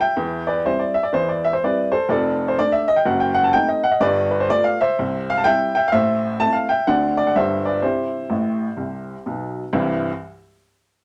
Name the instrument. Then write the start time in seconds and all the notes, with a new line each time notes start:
upright piano
0.01 E5 G5
0.17 E2 E3
0.47 B4 D5
0.66 G3 C4 E4 C5
0.79 D5
0.94 E5
1.03 D5
1.13 E2 E3 C5
1.29 D5
1.45 E5
1.53 C5
1.63 G3 C4 E4 B4 D5
1.92 A4 C5
2.09 F1 F2 A4 D5
2.48 C5
2.58 A3 D4 D5
2.72 E5
2.88 D#5
2.96 G5
3.05 F#1 F#2 F#5
3.20 G5
3.34 F#5
3.44 A5
3.53 A3 C4 D#4 G5
3.68 D#5
3.84 F#5
3.91 D#5
4.00 G1 G2 B4 D5
4.31 B4
4.40 C5
4.50 A3 B3 F4 D5
4.64 F5
4.81 C5 E5
4.99 C2 C3
5.30 F5
5.37 A5
5.44 G3 C4 E4 E5 G5
5.75 E5 G5
5.88 F5
5.92 A1 A2 C5 E5
6.40 A3 C4 E4 A5
6.53 F5
6.69 E5 G5
6.87 D2 D3 A3 C4 D4 D5 F#5
7.17 D5
7.27 F#5
7.35 G1 G2 G3 B3 D4 C5 E5
7.65 B4 D5
7.82 C3 E4 G4 C5
8.30 A1 A2
8.77 C2 C3
9.26 B1 B2
9.73 C2 G2 E3 G3 C4 E4